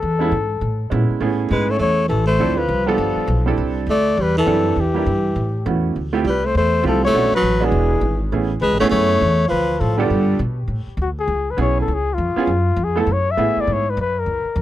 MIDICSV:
0, 0, Header, 1, 6, 480
1, 0, Start_track
1, 0, Key_signature, 3, "major"
1, 0, Tempo, 296736
1, 32, Time_signature, 4, 2, 24, 8
1, 23646, End_track
2, 0, Start_track
2, 0, Title_t, "Muted trumpet"
2, 0, Program_c, 0, 59
2, 0, Note_on_c, 0, 69, 85
2, 1414, Note_off_c, 0, 69, 0
2, 2455, Note_on_c, 0, 71, 80
2, 2765, Note_on_c, 0, 73, 88
2, 2790, Note_off_c, 0, 71, 0
2, 2924, Note_off_c, 0, 73, 0
2, 2933, Note_on_c, 0, 73, 94
2, 3370, Note_off_c, 0, 73, 0
2, 3386, Note_on_c, 0, 69, 80
2, 3666, Note_off_c, 0, 69, 0
2, 3674, Note_on_c, 0, 72, 92
2, 4166, Note_on_c, 0, 71, 82
2, 4190, Note_off_c, 0, 72, 0
2, 4651, Note_on_c, 0, 69, 75
2, 4676, Note_off_c, 0, 71, 0
2, 5611, Note_off_c, 0, 69, 0
2, 6314, Note_on_c, 0, 74, 90
2, 6819, Note_on_c, 0, 71, 90
2, 6844, Note_off_c, 0, 74, 0
2, 7080, Note_off_c, 0, 71, 0
2, 7089, Note_on_c, 0, 69, 87
2, 7766, Note_on_c, 0, 67, 81
2, 7790, Note_off_c, 0, 69, 0
2, 9178, Note_off_c, 0, 67, 0
2, 10178, Note_on_c, 0, 71, 78
2, 10457, Note_on_c, 0, 72, 87
2, 10481, Note_off_c, 0, 71, 0
2, 10615, Note_off_c, 0, 72, 0
2, 10630, Note_on_c, 0, 72, 93
2, 11058, Note_off_c, 0, 72, 0
2, 11122, Note_on_c, 0, 69, 86
2, 11375, Note_off_c, 0, 69, 0
2, 11399, Note_on_c, 0, 73, 97
2, 11831, Note_off_c, 0, 73, 0
2, 11889, Note_on_c, 0, 71, 88
2, 12374, Note_on_c, 0, 68, 82
2, 12399, Note_off_c, 0, 71, 0
2, 13311, Note_off_c, 0, 68, 0
2, 13938, Note_on_c, 0, 71, 93
2, 14220, Note_off_c, 0, 71, 0
2, 14238, Note_on_c, 0, 73, 97
2, 14322, Note_off_c, 0, 73, 0
2, 14425, Note_on_c, 0, 73, 105
2, 15322, Note_off_c, 0, 73, 0
2, 15367, Note_on_c, 0, 71, 87
2, 15857, Note_on_c, 0, 69, 76
2, 15881, Note_off_c, 0, 71, 0
2, 16164, Note_on_c, 0, 67, 76
2, 16189, Note_off_c, 0, 69, 0
2, 16828, Note_off_c, 0, 67, 0
2, 17822, Note_on_c, 0, 66, 66
2, 17949, Note_off_c, 0, 66, 0
2, 18103, Note_on_c, 0, 68, 80
2, 18610, Note_on_c, 0, 71, 70
2, 18635, Note_off_c, 0, 68, 0
2, 18771, Note_off_c, 0, 71, 0
2, 18786, Note_on_c, 0, 73, 80
2, 19046, Note_off_c, 0, 73, 0
2, 19100, Note_on_c, 0, 69, 74
2, 19311, Note_on_c, 0, 68, 78
2, 19336, Note_off_c, 0, 69, 0
2, 19631, Note_on_c, 0, 65, 78
2, 19655, Note_off_c, 0, 68, 0
2, 20768, Note_on_c, 0, 68, 80
2, 20792, Note_off_c, 0, 65, 0
2, 21047, Note_on_c, 0, 69, 81
2, 21071, Note_off_c, 0, 68, 0
2, 21230, Note_on_c, 0, 73, 91
2, 21254, Note_off_c, 0, 69, 0
2, 21531, Note_on_c, 0, 76, 96
2, 21555, Note_off_c, 0, 73, 0
2, 22008, Note_on_c, 0, 74, 87
2, 22032, Note_off_c, 0, 76, 0
2, 22206, Note_on_c, 0, 73, 90
2, 22231, Note_off_c, 0, 74, 0
2, 22482, Note_on_c, 0, 71, 73
2, 22507, Note_off_c, 0, 73, 0
2, 22629, Note_off_c, 0, 71, 0
2, 22663, Note_on_c, 0, 71, 85
2, 22954, Note_on_c, 0, 70, 78
2, 22978, Note_off_c, 0, 71, 0
2, 23646, Note_off_c, 0, 70, 0
2, 23646, End_track
3, 0, Start_track
3, 0, Title_t, "Grand piano"
3, 0, Program_c, 1, 0
3, 308, Note_on_c, 1, 56, 60
3, 330, Note_on_c, 1, 59, 57
3, 331, Note_on_c, 1, 61, 57
3, 344, Note_on_c, 1, 64, 69
3, 484, Note_off_c, 1, 56, 0
3, 494, Note_off_c, 1, 59, 0
3, 495, Note_off_c, 1, 61, 0
3, 501, Note_off_c, 1, 64, 0
3, 1458, Note_on_c, 1, 56, 60
3, 1473, Note_on_c, 1, 59, 53
3, 1481, Note_on_c, 1, 61, 53
3, 1490, Note_on_c, 1, 64, 64
3, 1939, Note_off_c, 1, 59, 0
3, 1940, Note_off_c, 1, 61, 0
3, 1945, Note_off_c, 1, 56, 0
3, 1949, Note_on_c, 1, 57, 66
3, 1950, Note_off_c, 1, 64, 0
3, 1963, Note_on_c, 1, 59, 56
3, 1964, Note_on_c, 1, 61, 59
3, 1974, Note_on_c, 1, 64, 57
3, 1976, Note_on_c, 1, 68, 66
3, 3282, Note_off_c, 1, 57, 0
3, 3289, Note_off_c, 1, 59, 0
3, 3289, Note_off_c, 1, 61, 0
3, 3294, Note_off_c, 1, 64, 0
3, 3296, Note_off_c, 1, 68, 0
3, 3879, Note_on_c, 1, 53, 64
3, 3880, Note_on_c, 1, 60, 62
3, 3887, Note_on_c, 1, 62, 57
3, 3887, Note_on_c, 1, 64, 59
3, 3897, Note_on_c, 1, 69, 72
3, 4144, Note_off_c, 1, 53, 0
3, 4144, Note_off_c, 1, 60, 0
3, 4148, Note_off_c, 1, 62, 0
3, 4148, Note_off_c, 1, 64, 0
3, 4153, Note_off_c, 1, 69, 0
3, 4632, Note_on_c, 1, 55, 73
3, 4643, Note_on_c, 1, 59, 67
3, 4647, Note_on_c, 1, 62, 67
3, 4657, Note_on_c, 1, 65, 62
3, 4667, Note_on_c, 1, 69, 81
3, 5267, Note_off_c, 1, 55, 0
3, 5272, Note_off_c, 1, 59, 0
3, 5275, Note_off_c, 1, 62, 0
3, 5279, Note_off_c, 1, 65, 0
3, 5285, Note_off_c, 1, 69, 0
3, 5594, Note_on_c, 1, 55, 63
3, 5597, Note_on_c, 1, 60, 57
3, 5610, Note_on_c, 1, 62, 61
3, 5617, Note_on_c, 1, 64, 58
3, 5624, Note_on_c, 1, 69, 74
3, 6228, Note_off_c, 1, 55, 0
3, 6229, Note_off_c, 1, 60, 0
3, 6236, Note_off_c, 1, 62, 0
3, 6239, Note_off_c, 1, 64, 0
3, 6243, Note_off_c, 1, 69, 0
3, 7214, Note_on_c, 1, 60, 58
3, 7218, Note_on_c, 1, 55, 62
3, 7218, Note_on_c, 1, 62, 56
3, 7232, Note_on_c, 1, 64, 57
3, 7242, Note_on_c, 1, 69, 66
3, 7703, Note_off_c, 1, 60, 0
3, 7705, Note_off_c, 1, 55, 0
3, 7705, Note_off_c, 1, 62, 0
3, 7712, Note_off_c, 1, 64, 0
3, 7717, Note_off_c, 1, 69, 0
3, 7995, Note_on_c, 1, 55, 57
3, 8002, Note_on_c, 1, 58, 55
3, 8010, Note_on_c, 1, 62, 57
3, 8020, Note_on_c, 1, 64, 55
3, 8022, Note_on_c, 1, 67, 66
3, 8166, Note_off_c, 1, 55, 0
3, 8170, Note_off_c, 1, 58, 0
3, 8174, Note_off_c, 1, 62, 0
3, 8179, Note_off_c, 1, 64, 0
3, 8180, Note_off_c, 1, 67, 0
3, 9152, Note_on_c, 1, 57, 54
3, 9157, Note_on_c, 1, 59, 49
3, 9159, Note_on_c, 1, 61, 51
3, 9170, Note_on_c, 1, 64, 47
3, 9182, Note_on_c, 1, 66, 60
3, 9632, Note_off_c, 1, 57, 0
3, 9634, Note_off_c, 1, 59, 0
3, 9635, Note_off_c, 1, 61, 0
3, 9640, Note_off_c, 1, 64, 0
3, 9646, Note_off_c, 1, 66, 0
3, 9913, Note_on_c, 1, 57, 70
3, 9915, Note_on_c, 1, 60, 59
3, 9922, Note_on_c, 1, 65, 64
3, 9927, Note_on_c, 1, 64, 61
3, 9936, Note_on_c, 1, 67, 74
3, 10085, Note_off_c, 1, 57, 0
3, 10086, Note_off_c, 1, 60, 0
3, 10089, Note_off_c, 1, 65, 0
3, 10092, Note_off_c, 1, 64, 0
3, 10096, Note_off_c, 1, 67, 0
3, 11041, Note_on_c, 1, 57, 62
3, 11058, Note_on_c, 1, 60, 58
3, 11059, Note_on_c, 1, 64, 55
3, 11068, Note_on_c, 1, 65, 55
3, 11079, Note_on_c, 1, 67, 64
3, 11525, Note_off_c, 1, 57, 0
3, 11544, Note_off_c, 1, 60, 0
3, 11544, Note_off_c, 1, 64, 0
3, 11549, Note_off_c, 1, 65, 0
3, 11549, Note_on_c, 1, 57, 64
3, 11552, Note_on_c, 1, 59, 58
3, 11554, Note_off_c, 1, 67, 0
3, 11562, Note_on_c, 1, 61, 54
3, 11571, Note_on_c, 1, 62, 53
3, 11571, Note_on_c, 1, 66, 68
3, 11818, Note_off_c, 1, 57, 0
3, 11819, Note_off_c, 1, 59, 0
3, 11824, Note_off_c, 1, 61, 0
3, 11828, Note_off_c, 1, 62, 0
3, 11828, Note_off_c, 1, 66, 0
3, 12301, Note_on_c, 1, 56, 69
3, 12310, Note_on_c, 1, 59, 64
3, 12315, Note_on_c, 1, 62, 65
3, 12326, Note_on_c, 1, 64, 60
3, 12332, Note_on_c, 1, 66, 78
3, 12940, Note_off_c, 1, 56, 0
3, 12944, Note_off_c, 1, 59, 0
3, 12947, Note_off_c, 1, 62, 0
3, 12952, Note_off_c, 1, 64, 0
3, 12955, Note_off_c, 1, 66, 0
3, 13461, Note_on_c, 1, 57, 54
3, 13467, Note_on_c, 1, 59, 52
3, 13471, Note_on_c, 1, 61, 50
3, 13479, Note_on_c, 1, 64, 52
3, 13488, Note_on_c, 1, 68, 63
3, 13733, Note_off_c, 1, 57, 0
3, 13736, Note_off_c, 1, 59, 0
3, 13738, Note_off_c, 1, 61, 0
3, 13742, Note_off_c, 1, 64, 0
3, 13746, Note_off_c, 1, 68, 0
3, 14239, Note_on_c, 1, 57, 81
3, 14250, Note_on_c, 1, 59, 73
3, 14255, Note_on_c, 1, 61, 74
3, 14257, Note_on_c, 1, 64, 71
3, 14267, Note_on_c, 1, 68, 87
3, 14868, Note_off_c, 1, 57, 0
3, 14874, Note_off_c, 1, 59, 0
3, 14876, Note_off_c, 1, 61, 0
3, 14877, Note_off_c, 1, 64, 0
3, 14883, Note_off_c, 1, 68, 0
3, 16137, Note_on_c, 1, 55, 74
3, 16151, Note_on_c, 1, 59, 66
3, 16154, Note_on_c, 1, 65, 65
3, 16158, Note_on_c, 1, 62, 64
3, 16173, Note_on_c, 1, 69, 77
3, 16778, Note_off_c, 1, 55, 0
3, 16785, Note_off_c, 1, 59, 0
3, 16786, Note_off_c, 1, 65, 0
3, 16788, Note_off_c, 1, 62, 0
3, 16795, Note_off_c, 1, 69, 0
3, 18714, Note_on_c, 1, 59, 64
3, 18725, Note_on_c, 1, 61, 58
3, 18737, Note_on_c, 1, 64, 58
3, 18746, Note_on_c, 1, 68, 70
3, 19212, Note_off_c, 1, 59, 0
3, 19218, Note_off_c, 1, 61, 0
3, 19224, Note_off_c, 1, 64, 0
3, 19229, Note_off_c, 1, 68, 0
3, 19998, Note_on_c, 1, 59, 72
3, 20016, Note_on_c, 1, 61, 70
3, 20028, Note_on_c, 1, 65, 66
3, 20033, Note_on_c, 1, 68, 78
3, 20168, Note_off_c, 1, 59, 0
3, 20176, Note_off_c, 1, 61, 0
3, 20182, Note_off_c, 1, 65, 0
3, 20185, Note_off_c, 1, 68, 0
3, 20956, Note_on_c, 1, 59, 62
3, 20958, Note_on_c, 1, 57, 64
3, 20972, Note_on_c, 1, 64, 63
3, 20982, Note_on_c, 1, 69, 74
3, 21127, Note_off_c, 1, 59, 0
3, 21128, Note_off_c, 1, 57, 0
3, 21135, Note_off_c, 1, 64, 0
3, 21140, Note_off_c, 1, 69, 0
3, 21631, Note_on_c, 1, 57, 66
3, 21632, Note_on_c, 1, 59, 62
3, 21647, Note_on_c, 1, 64, 62
3, 21653, Note_on_c, 1, 68, 72
3, 22351, Note_off_c, 1, 57, 0
3, 22351, Note_off_c, 1, 59, 0
3, 22359, Note_off_c, 1, 64, 0
3, 22362, Note_off_c, 1, 68, 0
3, 23646, End_track
4, 0, Start_track
4, 0, Title_t, "Tenor saxophone"
4, 0, Program_c, 2, 66
4, 2441, Note_on_c, 2, 56, 70
4, 2737, Note_on_c, 2, 57, 72
4, 2762, Note_off_c, 2, 56, 0
4, 2878, Note_off_c, 2, 57, 0
4, 2887, Note_on_c, 2, 57, 73
4, 3346, Note_off_c, 2, 57, 0
4, 3369, Note_on_c, 2, 52, 69
4, 3650, Note_off_c, 2, 52, 0
4, 3659, Note_on_c, 2, 57, 74
4, 4150, Note_on_c, 2, 53, 68
4, 4174, Note_off_c, 2, 57, 0
4, 4615, Note_off_c, 2, 53, 0
4, 4615, Note_on_c, 2, 53, 59
4, 5592, Note_off_c, 2, 53, 0
4, 6308, Note_on_c, 2, 57, 82
4, 6783, Note_on_c, 2, 55, 75
4, 6807, Note_off_c, 2, 57, 0
4, 7065, Note_off_c, 2, 55, 0
4, 7079, Note_on_c, 2, 52, 76
4, 7737, Note_off_c, 2, 52, 0
4, 7737, Note_on_c, 2, 52, 64
4, 9164, Note_off_c, 2, 52, 0
4, 10133, Note_on_c, 2, 55, 73
4, 10437, Note_on_c, 2, 57, 68
4, 10461, Note_off_c, 2, 55, 0
4, 10605, Note_off_c, 2, 57, 0
4, 10634, Note_on_c, 2, 57, 74
4, 11060, Note_off_c, 2, 57, 0
4, 11107, Note_on_c, 2, 53, 70
4, 11367, Note_off_c, 2, 53, 0
4, 11432, Note_on_c, 2, 57, 79
4, 11848, Note_off_c, 2, 57, 0
4, 11911, Note_on_c, 2, 54, 77
4, 12383, Note_on_c, 2, 52, 64
4, 12407, Note_off_c, 2, 54, 0
4, 13315, Note_off_c, 2, 52, 0
4, 13948, Note_on_c, 2, 56, 81
4, 14225, Note_off_c, 2, 56, 0
4, 14233, Note_on_c, 2, 57, 76
4, 14318, Note_off_c, 2, 57, 0
4, 14395, Note_on_c, 2, 57, 80
4, 15307, Note_off_c, 2, 57, 0
4, 15336, Note_on_c, 2, 53, 78
4, 15828, Note_off_c, 2, 53, 0
4, 15828, Note_on_c, 2, 53, 70
4, 16137, Note_on_c, 2, 50, 59
4, 16162, Note_off_c, 2, 53, 0
4, 16814, Note_off_c, 2, 50, 0
4, 23646, End_track
5, 0, Start_track
5, 0, Title_t, "Upright bass"
5, 0, Program_c, 3, 32
5, 39, Note_on_c, 3, 40, 74
5, 502, Note_off_c, 3, 40, 0
5, 510, Note_on_c, 3, 44, 74
5, 977, Note_off_c, 3, 44, 0
5, 992, Note_on_c, 3, 45, 75
5, 1458, Note_off_c, 3, 45, 0
5, 1480, Note_on_c, 3, 46, 88
5, 1754, Note_off_c, 3, 46, 0
5, 1948, Note_on_c, 3, 45, 72
5, 2416, Note_off_c, 3, 45, 0
5, 2436, Note_on_c, 3, 44, 83
5, 2892, Note_off_c, 3, 44, 0
5, 2901, Note_on_c, 3, 40, 81
5, 3373, Note_off_c, 3, 40, 0
5, 3390, Note_on_c, 3, 33, 86
5, 3857, Note_off_c, 3, 33, 0
5, 3864, Note_on_c, 3, 38, 75
5, 4334, Note_off_c, 3, 38, 0
5, 4343, Note_on_c, 3, 36, 83
5, 4808, Note_off_c, 3, 36, 0
5, 4818, Note_on_c, 3, 31, 83
5, 5102, Note_off_c, 3, 31, 0
5, 5297, Note_on_c, 3, 35, 91
5, 5770, Note_off_c, 3, 35, 0
5, 5782, Note_on_c, 3, 36, 78
5, 6244, Note_off_c, 3, 36, 0
5, 6254, Note_on_c, 3, 38, 81
5, 6729, Note_off_c, 3, 38, 0
5, 6752, Note_on_c, 3, 40, 84
5, 7213, Note_off_c, 3, 40, 0
5, 7223, Note_on_c, 3, 42, 87
5, 7693, Note_off_c, 3, 42, 0
5, 7703, Note_on_c, 3, 40, 75
5, 8173, Note_off_c, 3, 40, 0
5, 8191, Note_on_c, 3, 43, 82
5, 8657, Note_off_c, 3, 43, 0
5, 8664, Note_on_c, 3, 45, 78
5, 9133, Note_off_c, 3, 45, 0
5, 9153, Note_on_c, 3, 40, 87
5, 9617, Note_off_c, 3, 40, 0
5, 9636, Note_on_c, 3, 38, 71
5, 10092, Note_off_c, 3, 38, 0
5, 10102, Note_on_c, 3, 36, 79
5, 10571, Note_off_c, 3, 36, 0
5, 10591, Note_on_c, 3, 40, 83
5, 11049, Note_off_c, 3, 40, 0
5, 11059, Note_on_c, 3, 36, 92
5, 11524, Note_off_c, 3, 36, 0
5, 11534, Note_on_c, 3, 35, 76
5, 11818, Note_off_c, 3, 35, 0
5, 12005, Note_on_c, 3, 33, 83
5, 12475, Note_off_c, 3, 33, 0
5, 12484, Note_on_c, 3, 28, 86
5, 12951, Note_off_c, 3, 28, 0
5, 12961, Note_on_c, 3, 32, 92
5, 13440, Note_off_c, 3, 32, 0
5, 13460, Note_on_c, 3, 33, 75
5, 13930, Note_off_c, 3, 33, 0
5, 13939, Note_on_c, 3, 37, 90
5, 14105, Note_off_c, 3, 37, 0
5, 14105, Note_on_c, 3, 33, 57
5, 14254, Note_off_c, 3, 33, 0
5, 14264, Note_on_c, 3, 32, 63
5, 14411, Note_off_c, 3, 32, 0
5, 14421, Note_on_c, 3, 42, 85
5, 14890, Note_off_c, 3, 42, 0
5, 14900, Note_on_c, 3, 40, 93
5, 15370, Note_off_c, 3, 40, 0
5, 15389, Note_on_c, 3, 38, 78
5, 15854, Note_off_c, 3, 38, 0
5, 15864, Note_on_c, 3, 45, 86
5, 16332, Note_off_c, 3, 45, 0
5, 16341, Note_on_c, 3, 43, 81
5, 16800, Note_off_c, 3, 43, 0
5, 16810, Note_on_c, 3, 47, 88
5, 17260, Note_off_c, 3, 47, 0
5, 17270, Note_on_c, 3, 45, 69
5, 17565, Note_off_c, 3, 45, 0
5, 17746, Note_on_c, 3, 38, 81
5, 18229, Note_off_c, 3, 38, 0
5, 18239, Note_on_c, 3, 37, 77
5, 18716, Note_off_c, 3, 37, 0
5, 18725, Note_on_c, 3, 35, 87
5, 19203, Note_off_c, 3, 35, 0
5, 19215, Note_on_c, 3, 37, 74
5, 19689, Note_off_c, 3, 37, 0
5, 19702, Note_on_c, 3, 41, 80
5, 19983, Note_off_c, 3, 41, 0
5, 20175, Note_on_c, 3, 42, 77
5, 20638, Note_off_c, 3, 42, 0
5, 20648, Note_on_c, 3, 41, 86
5, 21126, Note_off_c, 3, 41, 0
5, 21135, Note_on_c, 3, 42, 78
5, 21610, Note_off_c, 3, 42, 0
5, 21637, Note_on_c, 3, 45, 81
5, 21912, Note_off_c, 3, 45, 0
5, 22117, Note_on_c, 3, 44, 78
5, 22581, Note_off_c, 3, 44, 0
5, 22597, Note_on_c, 3, 42, 85
5, 23061, Note_off_c, 3, 42, 0
5, 23068, Note_on_c, 3, 37, 72
5, 23348, Note_off_c, 3, 37, 0
5, 23545, Note_on_c, 3, 41, 85
5, 23646, Note_off_c, 3, 41, 0
5, 23646, End_track
6, 0, Start_track
6, 0, Title_t, "Muted upright bass strokes"
6, 1784, Note_on_c, 9, 29, 35
6, 1946, Note_off_c, 9, 29, 0
6, 5112, Note_on_c, 9, 29, 39
6, 5274, Note_off_c, 9, 29, 0
6, 11833, Note_on_c, 9, 29, 38
6, 11995, Note_off_c, 9, 29, 0
6, 17581, Note_on_c, 9, 29, 37
6, 17742, Note_off_c, 9, 29, 0
6, 20001, Note_on_c, 9, 29, 37
6, 20163, Note_off_c, 9, 29, 0
6, 21945, Note_on_c, 9, 29, 37
6, 22107, Note_off_c, 9, 29, 0
6, 23361, Note_on_c, 9, 29, 36
6, 23523, Note_off_c, 9, 29, 0
6, 23646, End_track
0, 0, End_of_file